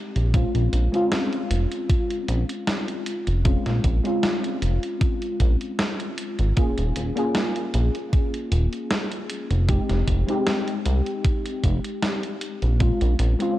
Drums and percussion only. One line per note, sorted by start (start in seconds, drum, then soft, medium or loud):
0.16 closed hi-hat soft
0.34 kick loud
0.34 closed hi-hat medium
0.55 closed hi-hat soft
0.73 closed hi-hat medium
0.94 closed hi-hat soft
1.12 snare loud
1.12 closed hi-hat medium
1.33 closed hi-hat soft
1.51 closed hi-hat medium
1.72 closed hi-hat soft
1.90 kick loud
1.90 closed hi-hat medium
2.11 closed hi-hat soft
2.29 closed hi-hat medium
2.49 closed hi-hat soft
2.67 snare loud
2.67 closed hi-hat medium
2.88 closed hi-hat soft
3.06 closed hi-hat medium
3.27 closed hi-hat soft
3.45 kick loud
3.45 closed hi-hat medium
3.66 snare soft
3.66 closed hi-hat soft
3.84 kick medium
3.84 closed hi-hat medium
4.05 closed hi-hat soft
4.23 snare loud
4.23 closed hi-hat medium
4.44 closed hi-hat soft
4.62 closed hi-hat medium
4.83 closed hi-hat soft
5.01 kick loud
5.01 closed hi-hat medium
5.22 closed hi-hat soft
5.40 kick medium
5.40 closed hi-hat medium
5.61 closed hi-hat soft
5.79 snare loud
5.79 closed hi-hat medium
6.00 closed hi-hat soft
6.18 closed hi-hat medium
6.39 closed hi-hat soft
6.57 kick loud
6.57 closed hi-hat medium
6.78 closed hi-hat soft
6.96 closed hi-hat medium
7.17 closed hi-hat soft
7.35 snare loud
7.35 closed hi-hat medium
7.56 closed hi-hat soft
7.74 closed hi-hat medium
7.95 closed hi-hat soft
8.13 kick loud
8.13 closed hi-hat medium
8.34 closed hi-hat soft
8.52 closed hi-hat medium
8.73 closed hi-hat soft
8.91 snare loud
8.91 closed hi-hat medium
9.12 closed hi-hat soft
9.30 closed hi-hat medium
9.51 closed hi-hat soft
9.69 kick loud
9.69 closed hi-hat medium
9.90 snare soft
9.90 closed hi-hat soft
10.08 kick medium
10.08 closed hi-hat medium
10.29 closed hi-hat soft
10.47 snare loud
10.47 closed hi-hat medium
10.68 closed hi-hat soft
10.86 closed hi-hat medium
11.06 closed hi-hat soft
11.25 kick loud
11.25 closed hi-hat medium
11.46 closed hi-hat soft
11.64 kick medium
11.64 closed hi-hat medium
11.84 closed hi-hat soft
12.03 snare loud
12.03 closed hi-hat medium
12.23 closed hi-hat soft
12.41 closed hi-hat medium
12.62 closed hi-hat soft
12.80 kick loud
12.80 closed hi-hat medium
13.01 closed hi-hat soft
13.19 closed hi-hat medium
13.40 closed hi-hat soft